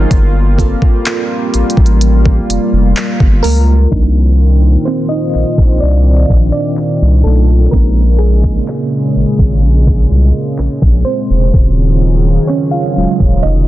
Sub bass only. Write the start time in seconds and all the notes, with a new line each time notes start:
0.11 G1
1.54 A1
1.77 A1
2.49 F1
2.73 F1
3.20 G1
3.44 C#2
3.92 C2
5.35 A#1
5.58 A#1
5.82 C2
6.30 A#1
7.02 C2
7.25 B1
7.73 A#1
9.16 G#1
9.39 G#1
9.63 A#1
10.11 C2
10.59 A#1
10.82 A#1
11.30 E1
11.54 D#1
12.97 D#1
13.20 D#1
13.44 F1